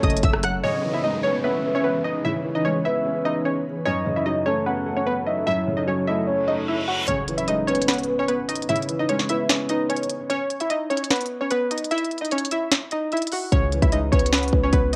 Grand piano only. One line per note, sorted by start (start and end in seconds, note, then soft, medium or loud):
0.00 0.65 F#2 medium
0.00 0.23 C#3 medium
0.00 0.43 F#3 medium
0.00 0.03 A3 loud
0.00 0.64 A3 medium
0.00 0.66 C#4 medium
0.64 1.64 C#3 medium
0.84 1.85 E3 medium
1.04 2.04 G#3 medium
1.24 1.63 B3 medium
1.44 2.45 C#4 medium
1.64 2.65 B3 medium
2.25 3.25 C#3 medium
2.45 3.45 E3 medium
2.65 3.65 G#3 medium
2.85 3.24 B3 medium
3.06 3.86 C#4 medium
3.26 3.86 B3 medium
3.86 4.86 F#2 medium
4.06 5.06 C#3 medium
4.26 5.27 F#3 medium
4.46 4.85 A3 loud
4.66 5.67 C#4 medium
4.86 5.87 A3 medium
5.47 6.47 F#2 medium
5.67 6.68 C#3 medium
5.87 6.88 F#3 medium
6.07 6.46 A3 medium
6.27 7.08 C#4 medium
6.48 7.08 A3 medium
7.08 8.09 C#3 medium
7.28 8.29 E3 medium
7.48 8.49 G#3 medium
7.69 8.07 B3 loud
7.89 8.89 C#4 medium
8.08 9.09 B3 medium
8.69 9.70 C#3 medium
8.89 9.90 E3 medium
9.09 10.10 G#3 medium
9.29 9.68 B3 loud
9.50 10.30 C#4 medium
9.70 10.30 B3 medium
13.52 14.53 C#3 medium
13.73 14.73 E3 medium
13.92 14.93 G#3 medium
14.13 14.51 B3 loud
14.33 14.96 C#4 medium
14.53 14.96 B3 medium